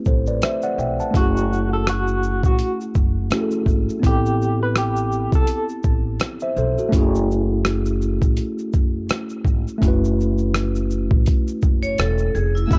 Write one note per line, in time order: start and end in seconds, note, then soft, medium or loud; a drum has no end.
0.00 0.72 A3 medium
0.00 0.74 C4 medium
0.00 0.75 E4 medium
0.00 0.76 G4 medium
0.00 0.29 B4 medium
0.05 0.38 A1 medium
0.05 0.27 A4 soft
0.05 0.26 C5 medium
0.05 kick medium
0.05 shaker soft
0.27 0.42 B4 medium
0.27 0.42 D5 medium
0.27 shaker soft
0.42 0.62 C5 medium
0.42 0.62 E5 medium
0.42 cross-stick loud
0.42 closed hi-hat medium
0.42 shaker medium
0.62 0.78 D5 medium
0.62 0.78 F#5 medium
0.62 shaker soft
0.78 0.96 B1 medium
0.78 0.99 E5 soft
0.78 0.98 G5 medium
0.78 shaker soft
1.00 1.34 F#5 soft
1.00 1.34 A5 medium
1.00 shaker soft
1.11 2.39 F#1 loud
1.11 3.25 A3 medium
1.11 3.27 C#4 medium
1.11 kick medium
1.15 3.28 E4 medium
1.15 1.69 F#4 loud
1.15 3.29 F#4 medium
1.15 closed hi-hat medium
1.15 shaker medium
1.21 3.30 G#4 medium
1.37 shaker soft
1.53 shaker soft
1.73 1.86 A4 medium
1.87 2.41 F#4 medium
1.87 cross-stick loud
1.87 closed hi-hat medium
1.87 shaker medium
2.08 shaker soft
2.23 shaker soft
2.43 2.57 A1 medium
2.43 2.77 F#4 medium
2.43 kick loud
2.43 shaker soft
2.59 closed hi-hat medium
2.59 shaker medium
2.81 shaker soft
2.95 3.27 F#1 medium
2.95 kick medium
2.95 shaker soft
3.30 4.03 A3 medium
3.30 4.03 C#4 medium
3.30 4.03 E4 medium
3.30 4.05 F#4 medium
3.30 cross-stick loud
3.30 closed hi-hat medium
3.30 shaker medium
3.35 3.40 G#4 soft
3.41 4.08 A4 medium
3.51 shaker soft
3.66 3.85 G#1 medium
3.66 kick medium
3.66 shaker soft
3.89 shaker soft
3.99 5.28 A1 medium
3.99 6.87 B3 medium
3.99 6.88 C4 medium
3.99 kick medium
4.04 6.89 E4 medium
4.04 4.58 G4 medium
4.04 6.18 G4 medium
4.04 closed hi-hat medium
4.04 shaker medium
4.09 6.19 A4 medium
4.26 shaker soft
4.42 shaker soft
4.63 4.75 B4 medium
4.76 5.30 G4 medium
4.76 cross-stick loud
4.76 closed hi-hat medium
4.76 shaker medium
4.96 shaker soft
5.12 shaker soft
5.32 5.46 C2 medium
5.32 5.67 A4 medium
5.32 kick loud
5.32 shaker soft
5.47 closed hi-hat medium
5.47 shaker medium
5.69 shaker soft
5.83 6.16 A1 medium
5.83 kick medium
5.83 shaker soft
6.20 cross-stick loud
6.20 closed hi-hat medium
6.20 shaker medium
6.40 6.56 C5 medium
6.40 6.56 E5 medium
6.40 shaker soft
6.56 6.74 B1 medium
6.56 6.77 A4 medium
6.56 6.77 C5 medium
6.56 shaker soft
6.78 6.94 F#4 soft
6.78 7.12 A4 medium
6.78 shaker soft
6.89 9.76 A3 medium
6.89 9.77 C#4 medium
6.89 kick medium
6.93 8.18 F#1 loud
6.93 9.78 E4 medium
6.93 9.79 F#4 medium
6.93 closed hi-hat medium
6.93 shaker medium
6.98 9.80 G#4 medium
7.15 shaker soft
7.31 shaker soft
7.65 cross-stick loud
7.65 closed hi-hat medium
7.65 shaker medium
7.86 shaker medium
8.02 shaker soft
8.22 8.35 A1 medium
8.22 kick medium
8.22 shaker soft
8.37 closed hi-hat medium
8.37 shaker medium
8.59 shaker soft
8.73 9.05 F#1 medium
8.73 kick medium
8.73 shaker soft
9.09 cross-stick loud
9.09 closed hi-hat medium
9.09 shaker medium
9.30 shaker soft
9.45 9.63 G#1 medium
9.45 kick medium
9.45 shaker soft
9.68 shaker soft
9.78 11.07 F#1 loud
9.78 12.65 A3 medium
9.78 12.66 C#4 medium
9.78 kick medium
9.83 12.68 E4 medium
9.83 12.69 F#4 medium
9.83 closed hi-hat medium
9.83 shaker medium
9.88 12.70 B4 medium
10.04 shaker soft
10.21 shaker soft
10.38 shaker soft
10.54 cross-stick loud
10.54 closed hi-hat medium
10.54 shaker medium
10.75 shaker soft
10.91 shaker soft
11.11 11.25 A1 medium
11.11 kick loud
11.26 kick medium
11.26 closed hi-hat medium
11.26 shaker medium
11.48 shaker soft
11.62 11.94 F#1 medium
11.62 kick medium
11.62 shaker soft
11.83 11.97 C#5 medium
11.83 shaker soft
11.98 12.31 E1 medium
11.98 12.33 A4 medium
11.98 cross-stick loud
11.98 closed hi-hat medium
11.98 shaker medium
12.18 shaker medium
12.35 12.67 F1 medium
12.35 12.54 G#4 medium
12.35 shaker soft
12.55 12.79 E4 medium
12.55 shaker soft
12.67 12.79 F#1 loud
12.67 12.79 A3 medium
12.67 12.79 C#4 medium
12.67 12.79 F#5 medium
12.67 12.79 G#5 medium
12.67 12.79 E6 medium
12.67 kick loud
12.71 12.79 E4 medium
12.71 12.79 E4 loud
12.71 12.79 F#4 medium
12.71 shaker medium